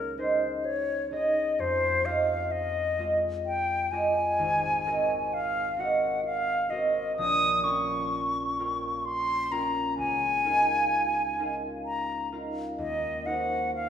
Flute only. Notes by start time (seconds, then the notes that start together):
Already playing: A#4
0.19 C5
0.65 C#5
1.12 D#5
1.60 C5
2.06 F5
2.52 D#5
3.46 G5
3.91 G#5
5.34 F5
5.80 F#5
6.25 F5
6.70 D#5
7.17 D#6
7.64 C#6
9.05 C6
9.52 A#5
9.98 G#5
11.86 A#5
12.79 D#5
13.26 F#5
13.75 F5